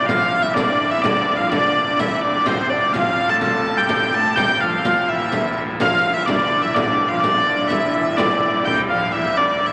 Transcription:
Already playing: D2 A2 C3 C4 D4 E4
0.06 F3 F5, riq, frame drum
0.10 F4
0.32 frame drum
0.42 E3 E4 E5
0.54 D3 D4 D5, riq, frame drum
0.90 E3 E4 E5
1.02 D3 D4 D5, riq, frame drum
1.36 F3 F4 F5
1.50 D3 D4 D5, riq, frame drum
1.85 D3 D4 D5
1.98 E3 E4 E5, riq, frame drum
2.21 D3 D4 D5
2.45 C3 C4 C5, riq, frame drum
2.70 D3 D4 D5, frame drum
2.93 D2 A2 F3 F4 F5, riq, frame drum
3.19 frame drum
3.29 A3 A4 A5
3.40 A3 A4 A5, riq, frame drum
3.77 G3 G4 G5
3.89 G3 G4 G5, riq, frame drum
4.13 A3 A4 A5
4.35 G3 G4 G5, riq, frame drum
4.59 F3 F4 F5, frame drum
4.85 F3 F4, riq, frame drum
5.02 F3
5.09 E3 E4 E5
5.32 E4, riq, frame drum
5.80 F3 F4 F5, riq, frame drum
6.05 frame drum
6.14 E3 E4 E5
6.26 D3 D4 D5, riq, frame drum
6.61 E3 F3 E4 E5
6.74 D3 D4 D5, riq, frame drum
7.08 F3 F4 F5
7.20 D3 D4 D5, riq
7.24 frame drum
7.46 D4, riq, frame drum
7.68 E3 E4 E5, riq
7.72 frame drum
7.92 E3 E4 E5
8.12 E4
8.16 D3 D4 D5, riq, frame drum
8.43 frame drum
8.65 D2 A2 G3 G4 G5, frame drum
8.89 F3 F5, frame drum
9.12 E3 E4 E5
9.36 D3 D4 D5, frame drum
9.59 D3 D4 D5, frame drum
9.66 E5

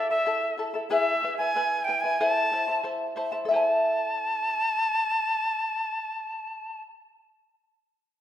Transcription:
Already playing: E4 E5
0.10 E4 A4 E5 A5
0.25 E4 A4 E5 A5
0.58 E4 A4 E5 A5
0.74 E4 A4 A5
0.90 E4 G#4 B4 E5 G#5
1.23 E4 B4 E5 G#5
1.37 E4 B4 G#5
1.55 E4 B4 E5 G#5
1.84 E5 G5
1.89 E4 B4 G#5
2.01 B4 G#5
2.05 E4
2.18 E4 A4 C5 E5 A5
2.52 E4 C5 E5 A5
2.68 E4 C5 A5
2.83 E4 C5 E5 A5
3.16 E4 C5 E5 A5
3.32 E4 C5 A5
3.45 A4 E5
3.49 E4 G#5
3.54 C5 A5
3.68 A5

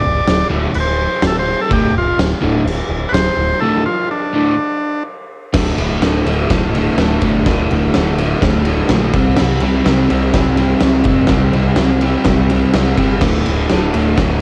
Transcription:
Already playing: D5
0.05 D1
0.27 D1, snare, crash
0.50 D1 D2 A2 D3
0.74 D1 B4, crash
0.80 C5
1.22 D1, snare, crash
1.27 A4
1.39 C5
1.61 A4
1.70 D1 D2 A2 D3 G4, kick, crash
1.93 D1
1.98 F4
2.18 D1, snare, crash
2.41 D1 D2 A2 D3
2.65 D1, crash
2.89 D1
3.09 D1 B4
3.13 C5, snare, crash
3.37 D1
3.60 D2 A2 D3 A4
3.86 F4
4.11 D4
4.33 D2 A2 D3
5.53 D1 D2 A2 D3, kick, snare, crash
5.77 D1 D2 A2 D3, ride
6.01 D1 D2 A2 D3, snare, ride
6.25 D1 D2 A2 D3, ride
6.50 D1 D2 A2 D3, kick, snare, ride
6.75 D2 A2 D3, ride
6.98 D1 D2 A2 D3, snare, ride
7.21 G1 D2 A2 D3, kick, ride
7.46 D1 D2 A2 D3, kick, snare, ride
7.71 D1 D2 A2 D3, ride
7.94 D1 D2 A2 D3, snare, ride
8.18 D2 A2 D3, ride
8.41 D1 D2 A2 D3, kick, snare, ride
8.65 D2 A2 D3, ride
8.89 A#1 D2 A2 D3, snare, ride
9.14 C2 C3 G3 C4, kick, ride
9.36 C3 G3 C4, snare, crash
9.40 C2
9.60 C2 C3 G3 C4, ride
9.84 C2 C3 G3 C4, snare, ride
10.09 C2 C3 G3 C4, ride
10.32 C2 C3 G3 C4, kick, snare, ride
10.56 C3 G3 C4, ride
10.80 C2 C3 G3 C4, snare, ride
11.04 F1 C3 G3 C4, kick, ride
11.27 C2 C3 G3, kick, snare, ride
11.31 C4
11.52 C2 C3 G3 C4, ride
11.76 C2 C3 G3 C4, snare, ride
12.01 C3 G3 C4, ride
12.24 C2 C3 G3 C4, kick, snare, ride
12.50 C3 G3 C4, ride
12.73 C2 C3 G3 C4, snare, ride
12.97 G1 C3 G3 C4, kick, ride
13.21 D1 D2 A2 D3, kick, snare, crash
13.45 D1 D2 A2 D3, ride
13.69 D1 D2 A2 D3, snare, ride
13.94 D1 D2 A2 D3, ride
14.17 D1 D2 A2 D3, kick, snare, ride

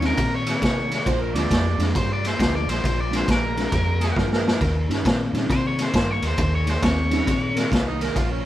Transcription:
Already playing: D#2
0.01 D#3 G3 A#3 C4 C#4 D#4 F4, snare, ride
0.06 A#4
0.17 A#2 D#3 C4, kick, snare, ride
0.36 C#5
0.46 D#3 C4, snare, ride
0.61 C3 D#3 A#3 C#5, kick, snare, ride
0.89 D#3 A#3, snare, ride
1.06 A#1 A#2 F3 C5, kick, snare, ride
1.21 A#4
1.34 D2 A#2 F3 G#3 A#3 C4 D4 F4 D5, snare, ride
1.51 F2 A#2 G3, kick, snare, ride
1.78 F2 A#2 G3 G#3 A#3 C4 D4 F4, snare, ride
1.95 G2 A#2 G3 C5, kick, snare, ride
2.13 D5
2.24 A#2 G3 C5, snare, ride
2.39 D2 A#2 F3 C5, kick, snare, ride
2.56 D5
2.66 A#1 A#2 F3 C5, ride
2.70 snare
2.84 A#1 A#2 F3 C5, kick, snare, ride
3.01 D5
3.11 A#2 F3 G#3 A#3 C4 D4 F4, snare, ride
3.17 C5
3.28 A#1 A#2 G3 A#4, kick, snare, ride
3.56 A#2 G3 G#3 A#3 C4 D4 F4, snare, ride
3.72 F2 A#2 G3, kick, snare, ride
4.01 A#2 G3 G#4, snare, ride
4.16 G2 A#2 F3 A#4, kick, snare
4.32 A#4, snare
4.45 A#2 F3, snare
4.59 D#2 D#3 A#3, kick, snare, ride
4.89 G2 D#3 G3 A#3 C#4 D#4 F4, snare, ride
5.05 A#2 D#3 C4, kick, snare, ride
5.33 A#2 D#3 G3 A#3 C4 C#4 D#4 F4, snare, ride
5.49 C3 D#3 C4 C5, kick, snare, ride
5.67 C#5
5.78 D#3 C4, snare, ride
5.83 C5
5.92 G2 D#3 A#3 C5, kick, snare, ride
6.11 C#5
6.21 D#2 D#3 A#3, snare, ride
6.27 C5
6.38 D#2 D#3 A#3, kick, snare, ride
6.42 C5
6.55 C#5
6.67 D#3 A#3 C5, snare, ride
6.82 D#2 D#3 C4 C#5, kick, snare, ride
7.11 D#3 G3 A#3 C4 C#4 D#4 F4, snare, ride
7.25 A#2 D#3 C4, kick, snare, ride
7.54 D#3 C4 A#4, snare, ride
7.70 C2 D#3 A#3 F4, kick, snare, ride
7.87 D#4
7.99 D#3 A#3 A#4, snare, ride
8.15 A#1 A#2 F3 F4, kick, snare, ride
8.31 C#4

